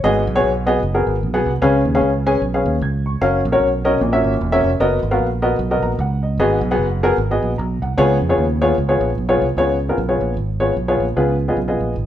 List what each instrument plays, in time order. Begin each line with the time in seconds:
Already playing: grand piano C#5
0.04 fingered electric bass G#1, grand piano G#2 B3 F#4 G#4 D#5
0.27 fingered electric bass B1
0.35 grand piano B3 F#4 G#4 C#5
0.43 fingered electric bass B1
0.66 grand piano B3 F#4 G#4 D#5
0.82 fingered electric bass F#1
0.94 grand piano B3 F#4 G#4 A#4
1.07 fingered electric bass G#1
1.23 fingered electric bass B1
1.34 grand piano B3 F#4 G#4 F#5
1.46 fingered electric bass C2
1.62 fingered electric bass C#2, grand piano C#3 C#4 G#4 B4 F5
1.85 fingered electric bass D#2
1.95 grand piano C#4 G#4 B4 F5
2.01 fingered electric bass C#2
2.26 grand piano C#4 G#4 B4 G#5
2.42 fingered electric bass B1
2.54 grand piano C#4 G#4 B4 F5
2.65 fingered electric bass D#2
2.81 fingered electric bass C#2, grand piano G#6
3.06 grand piano C#6
3.21 fingered electric bass F#1, grand piano C#4 F#4 A#4 F5
3.45 fingered electric bass A#1
3.52 grand piano C#4 F#4 A#4 C#5
3.60 fingered electric bass B1
3.85 grand piano C#4 F#4 A#4 D#5
4.01 fingered electric bass A#1, grand piano A#2
4.12 grand piano C#4 F#4 A#4 E5
4.24 fingered electric bass G#1
4.41 fingered electric bass E1
4.52 grand piano C#4 F#4 A#4 E5
4.64 fingered electric bass F1
4.80 fingered electric bass F#1, grand piano B3 F#4 A#4 D#5
5.03 fingered electric bass G#1
5.11 grand piano B3 F#4 A#4 F5
5.18 fingered electric bass A#1
5.42 grand piano B3 F#4 A#4 D#5
5.59 fingered electric bass B1
5.71 grand piano B3 F#4 A#4 D#5
5.82 fingered electric bass A#1, grand piano A#5
5.99 fingered electric bass C#2, grand piano F#5
6.23 grand piano D#5
6.37 fingered electric bass G#1, grand piano G#2 B3 F#4 G#4 D#5
6.61 fingered electric bass B1
6.71 grand piano B3 F#4 G#4 F#5
6.78 fingered electric bass F#1
7.03 grand piano B3 F#4 G#4 A#4
7.18 fingered electric bass G#1
7.31 grand piano B3 F#4 G#4 D#5
7.42 fingered electric bass A#1
7.58 fingered electric bass B1, grand piano A#5
7.82 fingered electric bass C2, grand piano F#5
7.98 fingered electric bass C#2, grand piano C#3 B3 F4 G#4 C#5
8.21 fingered electric bass F2
8.29 grand piano B3 F4 G#4 C#5
8.38 fingered electric bass D#2
8.61 grand piano B3 F4 G#4 C#5
8.78 fingered electric bass C#2
8.88 grand piano B3 F4 G#4 C#5
9.01 fingered electric bass A#1
9.18 fingered electric bass B1
9.29 grand piano B3 F4 G#4 C#5
9.41 fingered electric bass C2
9.57 fingered electric bass C#2, grand piano C#3 B3 F4 G#4 C#5
9.89 grand piano B3 F4 G#4 A#4
9.98 fingered electric bass B1
10.08 grand piano B3 F4 G#4 C#5
10.21 fingered electric bass A#1
10.37 fingered electric bass G#1
10.60 grand piano B3 F4 G#4 C#5
10.76 fingered electric bass B1
10.88 grand piano B3 F4 G#4 C#5
11.00 fingered electric bass A#1
11.16 fingered electric bass C#2, grand piano C#3 B3 F4 G#4 B4
11.48 grand piano B3 F4 G#4 D#5
11.56 fingered electric bass B1
11.68 grand piano B3 F4 G#4 D#5
11.81 fingered electric bass A#1
11.96 fingered electric bass G#1